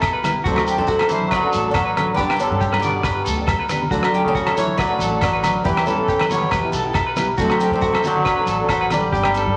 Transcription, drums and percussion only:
0.02 kick medium
0.02 cross-stick medium
0.02 low agogo medium
0.02 shekere medium
0.24 cross-stick medium
0.24 closed hi-hat medium
0.24 low conga medium
0.24 low agogo medium
0.24 shekere medium
0.45 kick medium
0.45 shekere medium
0.56 cross-stick medium
0.56 high conga medium
0.56 low agogo medium
0.67 closed hi-hat soft
0.67 shekere medium
0.80 high conga medium
0.87 kick medium
0.87 shekere medium
0.99 cross-stick medium
0.99 high conga medium
0.99 low agogo medium
1.09 closed hi-hat soft
1.09 low conga medium
1.09 shekere medium
1.22 low conga medium
1.31 kick medium
1.31 cross-stick medium
1.31 low agogo medium
1.31 shekere medium
1.53 closed hi-hat soft
1.53 high conga medium
1.53 shekere medium
1.74 kick medium
1.74 cross-stick medium
1.74 low agogo medium
1.74 shekere medium
1.97 cross-stick medium
1.97 closed hi-hat soft
1.97 low conga medium
1.97 low agogo medium
2.17 kick medium
2.17 shekere medium
2.30 cross-stick medium
2.30 high conga medium
2.30 low agogo medium
2.39 closed hi-hat soft
2.39 shekere medium
2.52 high conga medium
2.61 kick medium
2.61 shekere medium
2.73 cross-stick medium
2.73 high conga medium
2.73 low agogo medium
2.82 closed hi-hat soft
2.82 low conga medium
2.82 shekere medium
3.03 kick medium
3.03 cross-stick medium
3.03 low agogo medium
3.03 shekere medium
3.26 closed hi-hat soft
3.26 high conga medium
3.26 shekere medium
3.48 kick medium
3.48 cross-stick medium
3.48 high conga medium
3.48 low agogo medium
3.48 shekere medium
3.61 high conga medium
3.69 cross-stick medium
3.69 closed hi-hat soft
3.69 low conga medium
3.69 low agogo medium
3.69 shekere medium
3.83 low conga medium
3.91 kick medium
3.91 shekere medium
4.03 cross-stick medium
4.03 low agogo medium
4.14 closed hi-hat soft
4.26 high conga medium
4.35 kick medium
4.35 shekere medium
4.47 cross-stick medium
4.47 high conga medium
4.47 low agogo medium
4.57 closed hi-hat soft
4.57 low conga medium
4.57 shekere medium
4.68 low conga medium
4.79 kick medium
4.79 cross-stick medium
4.79 low agogo medium
4.79 shekere medium
4.99 closed hi-hat soft
4.99 high conga medium
4.99 shekere medium
5.22 kick medium
5.22 cross-stick medium
5.22 low agogo medium
5.22 shekere medium
5.43 cross-stick medium
5.43 closed hi-hat soft
5.43 low conga medium
5.43 low agogo medium
5.43 shekere medium
5.65 kick medium
5.65 shekere medium
5.77 cross-stick medium
5.77 high conga medium
5.77 low agogo medium
5.87 closed hi-hat soft
5.87 shekere medium
5.98 high conga medium
6.08 kick medium
6.08 shekere medium
6.19 cross-stick medium
6.19 high conga medium
6.19 low agogo medium
6.30 closed hi-hat soft
6.30 low conga medium
6.30 shekere medium
6.42 low conga medium
6.51 kick medium
6.51 cross-stick medium
6.51 low agogo medium
6.51 shekere medium
6.72 closed hi-hat soft
6.72 high conga medium
6.72 shekere medium
6.94 kick medium
6.94 cross-stick medium
6.94 low agogo medium
6.94 shekere medium
7.16 cross-stick medium
7.16 closed hi-hat soft
7.16 low conga medium
7.16 low agogo medium
7.16 shekere medium
7.38 kick medium
7.38 shekere medium
7.50 cross-stick medium
7.50 high conga medium
7.50 low agogo medium
7.60 closed hi-hat medium
7.60 shekere medium
7.71 high conga medium
7.81 kick medium
7.81 shekere medium
7.93 cross-stick medium
7.93 high conga medium
7.93 low agogo medium
8.04 closed hi-hat soft
8.04 low conga medium
8.04 shekere medium
8.16 low conga medium
8.25 kick medium
8.25 cross-stick medium
8.25 low agogo medium
8.25 shekere medium
8.47 closed hi-hat medium
8.47 high conga medium
8.47 shekere medium
8.69 kick medium
8.69 cross-stick medium
8.69 low agogo medium
8.69 shekere medium
8.90 cross-stick medium
8.90 closed hi-hat soft
8.90 low conga medium
8.90 low agogo medium
8.90 shekere medium
9.13 kick medium
9.13 shekere medium
9.24 cross-stick medium
9.24 high conga medium
9.24 low agogo medium
9.34 closed hi-hat soft
9.34 shekere medium
9.47 high conga medium

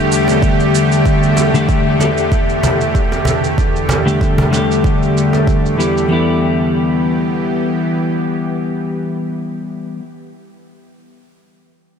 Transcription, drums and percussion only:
0.12 cabasa medium
0.28 cajon slap medium
0.28 cabasa soft
0.42 kick medium
0.42 cabasa soft
0.60 cabasa soft
0.75 cabasa medium
0.92 cabasa soft
1.06 kick medium
1.06 cabasa soft
1.23 cabasa soft
1.37 cajon slap medium
1.37 cabasa medium
1.55 cabasa soft
1.69 kick medium
1.69 cabasa soft
2.01 cajon slap medium
2.01 cabasa medium
2.18 cabasa soft
2.32 kick medium
2.32 cabasa soft
2.49 cabasa soft
2.63 cajon bass medium
2.63 cabasa medium
2.81 cabasa soft
2.95 kick medium
2.95 cabasa soft
3.12 cajon slap medium
3.12 cabasa soft
3.25 cajon bass medium
3.25 cabasa medium
3.44 cabasa soft
3.58 kick medium
3.58 cabasa soft
3.76 cabasa soft
3.89 cajon bass medium
3.89 cajon slap medium
3.89 cabasa medium
4.08 cabasa soft
4.21 kick medium
4.21 cabasa soft
4.38 cajon bass medium
4.53 cajon slap medium
4.53 cabasa medium
4.71 cabasa soft
4.84 kick medium
4.84 cabasa soft
5.03 cabasa soft
5.17 cabasa medium
5.33 cajon slap soft
5.33 cabasa soft
5.47 kick medium
5.47 cabasa soft
5.66 cabasa soft
5.80 cabasa medium
5.97 cabasa soft

